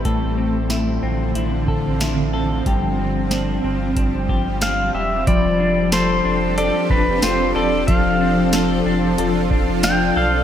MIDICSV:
0, 0, Header, 1, 7, 480
1, 0, Start_track
1, 0, Tempo, 652174
1, 38, Time_signature, 4, 2, 24, 8
1, 7682, End_track
2, 0, Start_track
2, 0, Title_t, "Pedal steel guitar"
2, 0, Program_c, 0, 26
2, 3404, Note_on_c, 0, 77, 87
2, 3637, Note_off_c, 0, 77, 0
2, 3640, Note_on_c, 0, 76, 78
2, 3881, Note_on_c, 0, 74, 105
2, 3886, Note_off_c, 0, 76, 0
2, 4363, Note_on_c, 0, 72, 92
2, 4374, Note_off_c, 0, 74, 0
2, 4841, Note_off_c, 0, 72, 0
2, 4843, Note_on_c, 0, 74, 97
2, 5083, Note_on_c, 0, 71, 90
2, 5088, Note_off_c, 0, 74, 0
2, 5322, Note_on_c, 0, 72, 94
2, 5328, Note_off_c, 0, 71, 0
2, 5554, Note_off_c, 0, 72, 0
2, 5557, Note_on_c, 0, 74, 86
2, 5794, Note_on_c, 0, 77, 91
2, 5805, Note_off_c, 0, 74, 0
2, 6727, Note_off_c, 0, 77, 0
2, 7243, Note_on_c, 0, 79, 106
2, 7484, Note_off_c, 0, 79, 0
2, 7487, Note_on_c, 0, 77, 104
2, 7682, Note_off_c, 0, 77, 0
2, 7682, End_track
3, 0, Start_track
3, 0, Title_t, "Vibraphone"
3, 0, Program_c, 1, 11
3, 3879, Note_on_c, 1, 83, 50
3, 4614, Note_off_c, 1, 83, 0
3, 5803, Note_on_c, 1, 72, 60
3, 6537, Note_off_c, 1, 72, 0
3, 7239, Note_on_c, 1, 74, 73
3, 7682, Note_off_c, 1, 74, 0
3, 7682, End_track
4, 0, Start_track
4, 0, Title_t, "Clean electric guitar"
4, 0, Program_c, 2, 27
4, 0, Note_on_c, 2, 60, 53
4, 0, Note_on_c, 2, 64, 55
4, 35, Note_on_c, 2, 45, 76
4, 38, Note_on_c, 2, 69, 63
4, 273, Note_off_c, 2, 60, 0
4, 276, Note_on_c, 2, 60, 51
4, 511, Note_off_c, 2, 64, 0
4, 514, Note_on_c, 2, 64, 54
4, 753, Note_off_c, 2, 60, 0
4, 756, Note_on_c, 2, 60, 54
4, 987, Note_off_c, 2, 64, 0
4, 996, Note_on_c, 2, 64, 56
4, 1229, Note_off_c, 2, 69, 0
4, 1238, Note_on_c, 2, 69, 58
4, 1470, Note_off_c, 2, 64, 0
4, 1479, Note_on_c, 2, 64, 58
4, 1710, Note_off_c, 2, 69, 0
4, 1718, Note_on_c, 2, 69, 57
4, 1956, Note_off_c, 2, 45, 0
4, 1958, Note_off_c, 2, 69, 0
4, 1959, Note_on_c, 2, 43, 78
4, 1964, Note_on_c, 2, 67, 59
4, 2007, Note_off_c, 2, 64, 0
4, 2197, Note_off_c, 2, 60, 0
4, 2200, Note_on_c, 2, 60, 49
4, 2438, Note_on_c, 2, 62, 53
4, 2676, Note_off_c, 2, 60, 0
4, 2679, Note_on_c, 2, 60, 51
4, 2916, Note_off_c, 2, 62, 0
4, 2919, Note_on_c, 2, 62, 54
4, 3157, Note_off_c, 2, 67, 0
4, 3160, Note_on_c, 2, 67, 55
4, 3398, Note_off_c, 2, 62, 0
4, 3401, Note_on_c, 2, 62, 51
4, 3640, Note_off_c, 2, 67, 0
4, 3643, Note_on_c, 2, 67, 56
4, 3879, Note_off_c, 2, 43, 0
4, 3882, Note_on_c, 2, 53, 90
4, 4118, Note_off_c, 2, 60, 0
4, 4121, Note_off_c, 2, 62, 0
4, 4121, Note_on_c, 2, 62, 63
4, 4357, Note_off_c, 2, 67, 0
4, 4360, Note_on_c, 2, 69, 73
4, 4591, Note_off_c, 2, 62, 0
4, 4600, Note_on_c, 2, 62, 64
4, 4832, Note_off_c, 2, 69, 0
4, 4841, Note_on_c, 2, 69, 75
4, 5076, Note_off_c, 2, 62, 0
4, 5085, Note_on_c, 2, 62, 63
4, 5323, Note_on_c, 2, 65, 66
4, 5555, Note_off_c, 2, 69, 0
4, 5563, Note_on_c, 2, 69, 71
4, 5794, Note_off_c, 2, 53, 0
4, 5803, Note_on_c, 2, 53, 92
4, 6032, Note_off_c, 2, 62, 0
4, 6041, Note_on_c, 2, 62, 62
4, 6273, Note_off_c, 2, 69, 0
4, 6282, Note_on_c, 2, 69, 76
4, 6512, Note_off_c, 2, 62, 0
4, 6521, Note_on_c, 2, 62, 69
4, 6751, Note_off_c, 2, 69, 0
4, 6760, Note_on_c, 2, 69, 75
4, 6990, Note_off_c, 2, 62, 0
4, 6999, Note_on_c, 2, 62, 61
4, 7231, Note_off_c, 2, 65, 0
4, 7240, Note_on_c, 2, 65, 69
4, 7470, Note_off_c, 2, 69, 0
4, 7479, Note_on_c, 2, 69, 72
4, 7682, Note_off_c, 2, 53, 0
4, 7682, Note_off_c, 2, 62, 0
4, 7682, Note_off_c, 2, 65, 0
4, 7682, Note_off_c, 2, 69, 0
4, 7682, End_track
5, 0, Start_track
5, 0, Title_t, "Ambient pad"
5, 0, Program_c, 3, 92
5, 32, Note_on_c, 3, 50, 65
5, 33, Note_on_c, 3, 53, 61
5, 33, Note_on_c, 3, 60, 74
5, 1936, Note_off_c, 3, 50, 0
5, 1955, Note_on_c, 3, 55, 60
5, 3846, Note_off_c, 3, 53, 0
5, 3846, Note_off_c, 3, 60, 0
5, 3857, Note_off_c, 3, 55, 0
5, 3877, Note_on_c, 3, 60, 71
5, 3877, Note_on_c, 3, 69, 80
5, 3878, Note_on_c, 3, 67, 71
5, 3879, Note_on_c, 3, 53, 76
5, 3880, Note_on_c, 3, 62, 67
5, 5779, Note_off_c, 3, 67, 0
5, 5799, Note_on_c, 3, 65, 65
5, 7682, Note_off_c, 3, 53, 0
5, 7682, Note_off_c, 3, 60, 0
5, 7682, Note_off_c, 3, 62, 0
5, 7682, Note_off_c, 3, 65, 0
5, 7682, Note_off_c, 3, 69, 0
5, 7682, End_track
6, 0, Start_track
6, 0, Title_t, "Sub bass"
6, 0, Program_c, 4, 38
6, 37, Note_on_c, 4, 33, 101
6, 728, Note_off_c, 4, 33, 0
6, 757, Note_on_c, 4, 33, 97
6, 985, Note_off_c, 4, 33, 0
6, 997, Note_on_c, 4, 33, 92
6, 1928, Note_off_c, 4, 33, 0
6, 1957, Note_on_c, 4, 31, 98
6, 2648, Note_off_c, 4, 31, 0
6, 2678, Note_on_c, 4, 31, 92
6, 2906, Note_off_c, 4, 31, 0
6, 2918, Note_on_c, 4, 31, 93
6, 3608, Note_off_c, 4, 31, 0
6, 3637, Note_on_c, 4, 28, 86
6, 3866, Note_off_c, 4, 28, 0
6, 3880, Note_on_c, 4, 29, 101
6, 4570, Note_off_c, 4, 29, 0
6, 4601, Note_on_c, 4, 29, 100
6, 4941, Note_off_c, 4, 29, 0
6, 5078, Note_on_c, 4, 29, 91
6, 5306, Note_off_c, 4, 29, 0
6, 5322, Note_on_c, 4, 29, 89
6, 5548, Note_off_c, 4, 29, 0
6, 5562, Note_on_c, 4, 28, 91
6, 5788, Note_off_c, 4, 28, 0
6, 5799, Note_on_c, 4, 29, 102
6, 6489, Note_off_c, 4, 29, 0
6, 6519, Note_on_c, 4, 29, 100
6, 6747, Note_off_c, 4, 29, 0
6, 6760, Note_on_c, 4, 29, 94
6, 7450, Note_off_c, 4, 29, 0
6, 7480, Note_on_c, 4, 35, 96
6, 7682, Note_off_c, 4, 35, 0
6, 7682, End_track
7, 0, Start_track
7, 0, Title_t, "Drums"
7, 37, Note_on_c, 9, 36, 97
7, 37, Note_on_c, 9, 42, 55
7, 110, Note_off_c, 9, 36, 0
7, 111, Note_off_c, 9, 42, 0
7, 514, Note_on_c, 9, 42, 47
7, 516, Note_on_c, 9, 38, 84
7, 588, Note_off_c, 9, 42, 0
7, 589, Note_off_c, 9, 38, 0
7, 996, Note_on_c, 9, 42, 68
7, 1070, Note_off_c, 9, 42, 0
7, 1235, Note_on_c, 9, 36, 76
7, 1309, Note_off_c, 9, 36, 0
7, 1476, Note_on_c, 9, 42, 57
7, 1478, Note_on_c, 9, 38, 90
7, 1550, Note_off_c, 9, 42, 0
7, 1552, Note_off_c, 9, 38, 0
7, 1958, Note_on_c, 9, 36, 92
7, 1959, Note_on_c, 9, 42, 56
7, 2032, Note_off_c, 9, 36, 0
7, 2032, Note_off_c, 9, 42, 0
7, 2436, Note_on_c, 9, 42, 52
7, 2437, Note_on_c, 9, 38, 84
7, 2509, Note_off_c, 9, 42, 0
7, 2511, Note_off_c, 9, 38, 0
7, 2917, Note_on_c, 9, 36, 85
7, 2919, Note_on_c, 9, 42, 66
7, 2991, Note_off_c, 9, 36, 0
7, 2992, Note_off_c, 9, 42, 0
7, 3157, Note_on_c, 9, 36, 70
7, 3231, Note_off_c, 9, 36, 0
7, 3396, Note_on_c, 9, 42, 59
7, 3398, Note_on_c, 9, 38, 101
7, 3469, Note_off_c, 9, 42, 0
7, 3472, Note_off_c, 9, 38, 0
7, 3880, Note_on_c, 9, 36, 107
7, 3880, Note_on_c, 9, 42, 72
7, 3954, Note_off_c, 9, 36, 0
7, 3954, Note_off_c, 9, 42, 0
7, 4358, Note_on_c, 9, 42, 62
7, 4360, Note_on_c, 9, 38, 107
7, 4360, Note_on_c, 9, 54, 70
7, 4431, Note_off_c, 9, 42, 0
7, 4433, Note_off_c, 9, 38, 0
7, 4434, Note_off_c, 9, 54, 0
7, 4841, Note_on_c, 9, 42, 76
7, 4914, Note_off_c, 9, 42, 0
7, 5078, Note_on_c, 9, 36, 90
7, 5152, Note_off_c, 9, 36, 0
7, 5316, Note_on_c, 9, 42, 73
7, 5318, Note_on_c, 9, 38, 118
7, 5320, Note_on_c, 9, 54, 72
7, 5390, Note_off_c, 9, 42, 0
7, 5392, Note_off_c, 9, 38, 0
7, 5394, Note_off_c, 9, 54, 0
7, 5800, Note_on_c, 9, 36, 112
7, 5800, Note_on_c, 9, 42, 72
7, 5873, Note_off_c, 9, 42, 0
7, 5874, Note_off_c, 9, 36, 0
7, 6276, Note_on_c, 9, 42, 64
7, 6277, Note_on_c, 9, 38, 111
7, 6278, Note_on_c, 9, 54, 67
7, 6349, Note_off_c, 9, 42, 0
7, 6351, Note_off_c, 9, 38, 0
7, 6352, Note_off_c, 9, 54, 0
7, 6759, Note_on_c, 9, 42, 81
7, 6833, Note_off_c, 9, 42, 0
7, 6997, Note_on_c, 9, 36, 95
7, 7071, Note_off_c, 9, 36, 0
7, 7236, Note_on_c, 9, 42, 76
7, 7238, Note_on_c, 9, 38, 123
7, 7240, Note_on_c, 9, 54, 70
7, 7310, Note_off_c, 9, 42, 0
7, 7312, Note_off_c, 9, 38, 0
7, 7314, Note_off_c, 9, 54, 0
7, 7682, End_track
0, 0, End_of_file